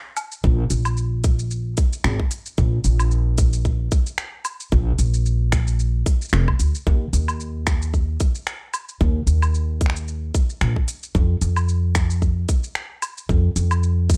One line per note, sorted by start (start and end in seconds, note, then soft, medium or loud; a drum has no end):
0.17 open hi-hat medium
0.17 low woodblock medium
0.17 shaker medium
0.32 shaker soft
0.44 0.65 A#1 loud
0.44 kick loud
0.44 shaker soft
0.70 1.73 A#1 medium
0.70 open hi-hat medium
0.70 shaker medium
0.85 low woodblock medium
0.85 shaker soft
0.97 shaker soft
1.24 kick loud
1.24 open hi-hat medium
1.24 shaker medium
1.39 shaker soft
1.51 shaker soft
1.77 kick loud
1.77 open hi-hat medium
1.77 shaker medium
1.93 shaker soft
2.04 2.16 G#1 medium
2.04 finger snap medium
2.04 shaker soft
2.20 kick medium
2.31 open hi-hat medium
2.31 shaker medium
2.46 shaker soft
2.58 2.79 A#1 medium
2.58 kick loud
2.58 shaker soft
2.84 3.87 A#1 medium
2.84 open hi-hat medium
2.84 shaker medium
3.00 low woodblock medium
3.00 shaker soft
3.11 shaker soft
3.38 kick loud
3.38 open hi-hat medium
3.38 shaker medium
3.53 shaker medium
3.65 kick medium
3.65 shaker soft
3.92 kick loud
3.92 shaker medium
4.07 shaker soft
4.18 finger snap medium
4.18 shaker soft
4.45 open hi-hat medium
4.45 low woodblock medium
4.45 shaker medium
4.60 shaker soft
4.72 4.93 A#1 medium
4.72 kick loud
4.72 shaker soft
4.99 6.01 A#1 medium
4.99 open hi-hat medium
4.99 shaker medium
5.14 shaker soft
5.26 shaker soft
5.52 finger snap medium
5.52 kick loud
5.52 open hi-hat medium
5.52 shaker medium
5.67 shaker soft
5.80 shaker soft
6.06 kick loud
6.06 open hi-hat medium
6.06 shaker medium
6.22 shaker soft
6.24 shaker soft
6.29 6.44 F1 loud
6.29 finger snap medium
6.29 shaker soft
6.33 shaker soft
6.48 kick medium
6.48 low woodblock medium
6.59 6.71 D2 medium
6.59 open hi-hat medium
6.59 shaker medium
6.75 shaker soft
6.87 7.07 D#2 medium
6.87 kick loud
6.87 shaker soft
7.13 8.15 D#2 medium
7.13 open hi-hat medium
7.13 shaker medium
7.28 low woodblock medium
7.28 shaker soft
7.40 shaker soft
7.67 finger snap medium
7.67 kick loud
7.67 open hi-hat medium
7.67 shaker medium
7.82 shaker soft
7.94 kick medium
7.94 shaker soft
8.20 kick loud
8.20 open hi-hat medium
8.20 shaker medium
8.35 shaker soft
8.47 finger snap medium
8.47 shaker soft
8.74 open hi-hat medium
8.74 low woodblock medium
8.74 shaker medium
8.89 shaker soft
9.01 9.22 D#2 medium
9.01 kick loud
9.01 shaker soft
9.27 10.29 D#2 medium
9.27 open hi-hat medium
9.27 shaker medium
9.42 low woodblock medium
9.42 shaker soft
9.54 shaker soft
9.81 kick loud
9.81 open hi-hat medium
9.86 finger snap soft
9.90 finger snap medium
9.96 shaker soft
10.08 shaker soft
10.35 kick loud
10.35 open hi-hat medium
10.35 shaker medium
10.50 shaker soft
10.61 10.73 A#1 medium
10.61 finger snap medium
10.61 shaker soft
10.76 kick medium
10.88 open hi-hat medium
10.88 shaker medium
11.03 shaker soft
11.15 11.36 F2 medium
11.15 kick loud
11.15 shaker soft
11.41 12.44 F2 medium
11.41 open hi-hat medium
11.41 shaker medium
11.56 low woodblock medium
11.56 shaker soft
11.69 shaker soft
11.95 finger snap medium
11.95 kick loud
11.95 open hi-hat medium
11.95 shaker medium
12.10 shaker soft
12.22 kick medium
12.22 shaker soft
12.49 kick loud
12.49 open hi-hat medium
12.49 shaker medium
12.64 shaker soft
12.75 finger snap medium
12.75 shaker soft
13.02 open hi-hat loud
13.02 low woodblock medium
13.02 shaker medium
13.18 shaker soft
13.29 13.50 F2 medium
13.29 kick loud
13.29 shaker soft
13.56 14.17 F2 medium
13.56 open hi-hat medium
13.56 shaker medium
13.71 low woodblock medium
13.71 shaker soft
13.83 shaker soft
14.10 kick loud
14.10 open hi-hat medium
14.10 shaker medium
14.13 shaker medium